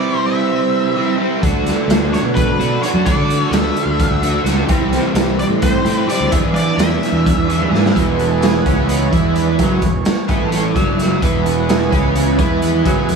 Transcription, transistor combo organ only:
0.00 1.40 C4 medium
0.00 1.40 E4 medium
0.00 1.40 B4 medium
1.41 4.65 D4 medium
1.41 4.65 F#4 medium
1.41 4.65 A4 medium
4.67 6.30 C4 medium
4.67 7.91 E4 medium
4.67 6.30 B5 medium
6.31 7.93 D4 medium
6.31 7.93 G#4 medium
7.98 9.56 E3 soft
7.98 9.56 G#3 soft
7.98 9.56 B3 medium
8.19 8.43 A4 medium
8.41 8.63 G#4 loud
8.63 9.07 F#4 medium
9.11 9.35 E4 medium
9.33 9.58 D4 medium
9.60 9.90 E3 medium
9.60 9.91 G#3 soft
9.60 9.91 B3 medium
9.60 10.25 C#4 medium
10.29 10.50 E3 soft
10.29 10.50 G#3 soft
10.29 10.51 B3 medium
10.49 10.72 C#4 medium
10.74 10.99 D4 medium
10.97 11.46 E4 loud
11.22 12.81 E3 medium
11.22 12.82 G#3 soft
11.22 12.83 B3 medium
11.45 11.69 F#4 medium
11.69 12.12 G#4 medium
12.84 13.16 E3 medium
12.84 13.16 G#3 soft
12.84 13.16 B3 medium
12.84 13.16 G#4 medium

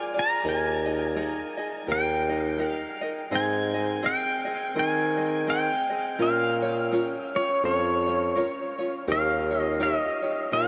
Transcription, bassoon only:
0.44 1.38 D#2 medium
1.88 2.81 D#2 medium
3.32 4.11 G#2 medium
4.76 5.69 D#3 medium
6.20 7.13 A#2 medium
7.63 8.43 F2 medium
9.08 10.01 D#2 medium
10.52 10.68 A#2 medium

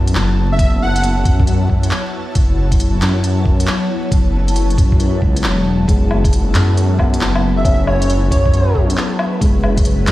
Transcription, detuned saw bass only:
0.00 0.14 F#2 loud
0.15 0.58 F#1 loud
0.59 1.24 F#1 loud
1.25 1.91 F#2 loud
2.36 3.01 F#1 medium
3.02 3.67 F#2 loud
4.12 4.77 F#1 loud
4.78 5.21 F#2 loud
5.22 5.45 C#2 medium
5.44 5.87 E1 medium
5.88 6.54 F#1 loud
6.55 7.20 F#2 loud
7.21 7.64 F#1 loud
7.65 8.30 F#1 medium
8.31 8.96 F#2 loud
9.41 10.07 F#1 medium
10.08 10.12 F#2 loud

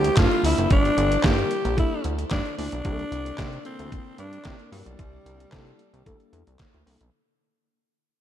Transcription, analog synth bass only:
0.00 0.10 D2 medium
0.17 0.28 G2 loud
0.43 0.54 D2 medium
0.58 0.67 F#1 medium
0.71 0.91 G1 loud
0.97 1.17 G1 loud
1.24 1.44 G2 loud
1.65 1.85 A#1 loud
2.05 2.25 D2 loud
2.31 2.42 G2 loud
2.58 2.69 D2 medium
2.73 2.82 B1 medium
2.85 3.05 C2 loud
3.12 3.32 C2 loud
3.39 3.59 C3 loud
3.79 3.99 D2 medium
4.18 4.39 G2 medium
4.45 4.56 C3 loud
4.72 4.83 G2 medium
4.86 4.96 B1 loud
4.99 5.19 C2 loud
5.26 5.46 C2 loud
5.53 5.73 C3 loud
5.93 6.03 C2 loud
6.06 6.17 D2 medium
6.33 6.43 E2 loud
6.47 6.57 C2 medium
6.74 6.84 D2 medium
6.86 6.97 C2 loud
7.01 7.10 B1 loud

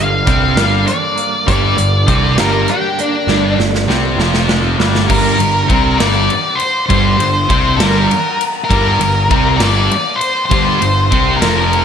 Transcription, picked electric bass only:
0.00 0.25 G1 medium
0.27 0.55 C2 medium
0.56 0.85 G1 loud
1.48 1.76 G1 loud
1.77 2.05 G1 medium
2.08 2.36 C2 medium
2.37 2.65 G1 loud
3.27 3.56 G1 loud
3.58 3.86 G1 medium
3.88 4.16 C2 loud
4.17 4.74 F1 loud
4.78 5.07 G1 loud
5.09 5.37 G1 medium
5.39 5.67 G1 medium
5.70 5.98 C2 loud
6.00 6.28 G1 loud
6.90 7.17 G1 loud
7.18 7.47 G1 medium
7.50 7.77 C2 loud
7.78 8.07 G1 loud
8.70 8.98 G1 medium
9.00 9.28 G1 medium
9.31 9.59 C2 medium
9.60 9.88 G1 loud
10.51 10.79 G1 loud
10.81 11.09 G1 medium
11.12 11.40 C2 medium
11.41 11.85 F1 loud

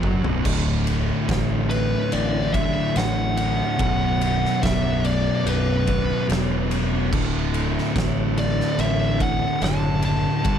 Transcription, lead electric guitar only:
1.70 2.13 B4 medium
2.13 2.51 D5 medium
2.54 2.97 E5 loud
2.97 3.36 F#5 loud
3.38 4.66 F#5 loud
4.63 5.05 E5 medium
5.05 5.48 D5 medium
5.47 6.26 B4 medium
8.39 8.80 D5 medium
8.80 9.22 E5 medium
9.22 9.63 F#5 loud
9.63 10.01 A5 loud
10.05 10.59 A5 loud

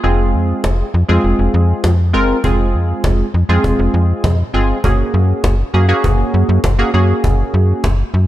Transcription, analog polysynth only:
0.03 0.86 G#3 medium
0.03 0.86 C4 medium
0.03 0.86 F4 medium
0.03 0.86 G#4 medium
1.08 1.91 G#3 medium
1.08 1.91 C4 medium
1.08 1.91 F4 medium
1.08 1.91 G#4 loud
2.13 2.37 G#3 loud
2.13 2.37 C4 medium
2.13 2.37 F4 medium
2.13 2.38 A#4 loud
2.44 3.26 G#3 medium
2.44 3.26 C4 medium
2.44 3.26 F4 medium
2.44 3.26 G#4 medium
3.49 4.31 G#3 loud
3.49 4.31 C4 medium
3.49 4.31 F4 medium
3.49 4.31 G#4 loud
4.54 4.77 G#3 medium
4.54 4.77 C4 medium
4.54 4.78 F4 medium
4.54 4.78 G#4 loud
4.84 5.54 A#3 medium
4.84 5.55 C#4 medium
4.84 5.55 F#4 medium
4.84 5.55 G#4 medium
5.74 5.86 A#3 medium
5.74 5.86 C#4 medium
5.74 5.86 F#4 medium
5.74 5.86 G#4 medium
5.88 6.59 A#3 loud
5.88 6.59 C#4 medium
5.88 6.59 F#4 medium
5.88 6.59 G#4 loud
6.79 6.91 A#3 medium
6.79 6.91 C#4 medium
6.79 6.91 F#4 medium
6.79 6.91 G#4 loud
6.94 7.88 A#3 medium
6.94 7.88 C#4 medium
6.94 7.88 F#4 medium
6.94 7.88 G#4 loud

